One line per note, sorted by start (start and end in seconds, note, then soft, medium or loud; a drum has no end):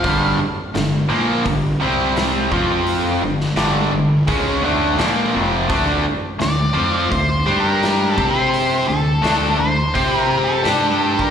0.00 0.38 G2 medium
0.00 0.38 D3 medium
0.00 0.34 F5 medium
0.04 0.37 G1 medium
0.04 0.38 G3 medium
0.04 kick loud
0.04 open hi-hat soft
0.40 muted fingered electric bass stroke soft
0.40 muted overdriven electric guitar stroke medium
0.75 1.08 G1 medium
0.75 1.03 G2 medium
0.75 1.03 D3 medium
0.75 snare loud
0.75 open hi-hat soft
1.09 1.43 A#1 medium
1.09 1.44 A#2 medium
1.09 1.44 F3 medium
1.09 1.44 A#3 loud
1.45 1.78 G1 medium
1.45 1.73 G2 medium
1.45 1.74 D3 medium
1.45 kick medium
1.45 open hi-hat soft
1.80 2.47 C2 medium
1.80 2.50 C3 medium
1.80 2.51 G3 medium
1.80 2.51 C4 medium
2.16 snare loud
2.16 open hi-hat soft
2.52 3.18 F2 medium
2.52 3.21 F3 medium
2.52 3.21 C4 medium
2.52 3.22 F4 medium
2.52 kick medium
2.86 open hi-hat soft
3.22 3.55 G1 medium
3.22 3.51 G2 medium
3.22 3.51 D3 medium
3.41 snare soft
3.56 3.90 G1 medium
3.56 3.91 G2 medium
3.56 3.91 D3 medium
3.56 3.92 G3 medium
3.56 snare loud
3.56 open hi-hat soft
3.93 4.26 G1 medium
3.93 4.21 G2 medium
3.93 4.21 D3 medium
4.28 4.61 C#2 medium
4.28 4.62 C#3 medium
4.28 4.62 G#3 medium
4.28 4.63 C#4 loud
4.28 kick medium
4.28 open hi-hat soft
4.62 4.96 D2 medium
4.62 4.97 D3 medium
4.62 4.98 A3 medium
4.62 4.98 D4 medium
4.98 5.32 A#1 medium
4.98 5.33 A#2 medium
4.98 5.33 F3 medium
4.98 5.33 A#3 loud
4.98 snare medium
4.98 open hi-hat soft
5.33 5.67 F1 medium
5.33 5.68 F2 medium
5.33 5.68 C3 medium
5.33 5.68 F3 medium
5.68 6.03 D2 medium
5.68 6.02 D3 medium
5.68 6.04 A3 medium
5.68 6.04 D4 loud
5.68 kick loud
5.68 open hi-hat soft
6.04 muted overdriven electric guitar stroke medium
6.04 muted fingered electric bass stroke soft
6.39 6.74 D2 medium
6.39 6.68 D3 medium
6.39 6.68 A3 medium
6.39 7.08 D5 medium
6.39 snare loud
6.39 open hi-hat soft
6.74 7.09 F2 medium
6.74 7.09 F3 medium
6.74 7.09 C4 medium
6.74 7.10 F4 medium
7.10 7.44 D2 medium
7.10 7.39 D3 medium
7.10 7.39 A3 medium
7.10 7.60 C5 medium
7.10 kick medium
7.10 open hi-hat soft
7.46 8.13 G2 medium
7.46 8.16 G3 medium
7.46 8.16 D4 medium
7.46 8.16 G4 medium
7.60 8.10 A#4 medium
7.83 snare medium
7.83 open hi-hat soft
8.10 8.30 A4 medium
8.17 8.85 C3 medium
8.17 8.87 C4 medium
8.17 8.87 G4 medium
8.17 8.87 C5 medium
8.17 kick loud
8.31 8.85 C5 medium
8.54 open hi-hat soft
8.87 9.22 D2 medium
8.87 9.16 D3 medium
8.87 9.16 A3 medium
8.87 9.59 A4 medium
9.22 9.57 D2 medium
9.22 9.57 D3 medium
9.22 9.58 A3 medium
9.22 9.58 D4 medium
9.22 snare loud
9.22 open hi-hat soft
9.58 9.93 D2 medium
9.58 9.87 D3 medium
9.58 9.87 A3 medium
9.58 10.17 C5 medium
9.94 10.62 C3 medium
9.94 10.63 C4 medium
9.94 10.63 G4 loud
9.94 10.64 C5 medium
9.94 kick medium
9.94 open hi-hat soft
10.17 10.38 A#4 medium
10.44 11.14 A4 medium
10.64 11.30 G2 medium
10.64 11.30 G3 medium
10.64 11.30 D4 medium
10.64 11.30 G4 medium
10.64 snare loud
10.64 open hi-hat soft
11.14 11.30 A#4 medium
11.19 kick medium